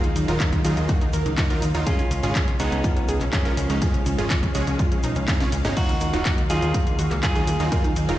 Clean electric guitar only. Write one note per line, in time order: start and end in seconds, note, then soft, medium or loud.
0.00 1.77 F4 medium
0.00 1.77 G#4 medium
1.86 2.50 C#4 medium
1.86 2.50 F4 loud
2.60 3.23 B3 medium
2.60 3.23 D#4 loud
3.33 5.67 F3 medium
3.33 5.67 C#4 loud
5.77 6.40 D#4 medium
5.77 6.40 F#4 loud
6.50 7.14 F4 medium
6.50 7.14 G#4 medium
7.23 8.19 F4 medium
7.23 8.19 G#4 loud